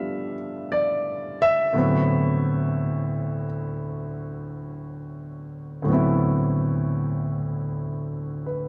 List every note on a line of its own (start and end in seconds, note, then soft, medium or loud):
0.00 1.74 G2 medium
0.00 1.74 F3 soft
0.00 1.74 G3 soft
0.00 1.75 A3 soft
0.00 1.74 B3 soft
0.00 1.75 D4 soft
0.00 1.75 F4 soft
0.00 1.75 G4 medium
0.00 0.35 E5 medium
0.00 1.77 F5 medium
0.72 1.43 D5 medium
1.42 3.44 E5 loud
1.73 5.81 D2 medium
1.73 5.83 A2 medium
1.73 5.85 F#3 medium
1.73 5.87 B3 medium
1.77 5.89 C4 medium
1.77 5.90 E4 medium
5.82 8.68 D2 medium
5.82 8.68 A2 medium
5.86 8.68 F#3 medium
5.86 8.68 B3 medium
5.91 8.68 C4 soft
5.91 8.68 E4 medium
8.46 8.68 B4 soft